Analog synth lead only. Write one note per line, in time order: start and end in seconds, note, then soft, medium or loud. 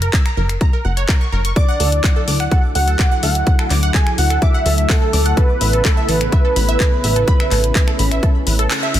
1.56 2.48 D5 loud
2.52 2.62 F#5 loud
2.75 3.20 F#5 loud
3.23 3.67 F#5 loud
3.95 4.17 G#5 loud
4.18 4.44 F#5 loud
4.42 4.91 E5 loud
4.90 5.39 A4 loud
5.37 5.84 B4 loud
5.85 6.10 A4 loud
6.09 8.71 B4 loud